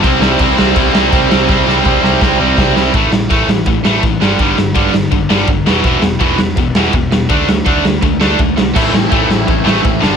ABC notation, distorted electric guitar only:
X:1
M:4/4
L:1/8
Q:1/4=165
K:C
V:1 name="Distorted electric guitar" clef=bass
[C,G,C] [C,G,C] [C,G,C] [C,G,C] [C,G,C] [C,G,C] [C,G,C] [C,G,C] | [C,G,C] [C,G,C] [C,G,C] [C,G,C] [C,G,C] [C,G,C] [C,G,C] [C,G,C] | [K:Am] [A,,E,A,] [A,,E,] [A,,E,A,] [A,,E,] [A,,E,] [A,,E,A,] [A,,E,] [G,,D,G,] | [G,,D,G,] [G,,D,] [G,,D,G,] [G,,D,] [G,,D,] [G,,D,G,] [G,,D,] [E,,B,,E,] |
[E,,B,,E,] [E,,B,,] [E,,B,,E,] [E,,B,,] [E,,B,,] [E,,B,,E,] [E,,B,,] [E,,B,,] | [D,A,D] [D,A,] [D,A,D] [D,A,] [D,A,] [D,A,D] [D,A,] [D,A,] | [A,,E,A,] [A,,E,] [A,,E,A,] [A,,E,] [A,,E,] [A,,E,A,] [A,,E,] [G,,D,G,] |]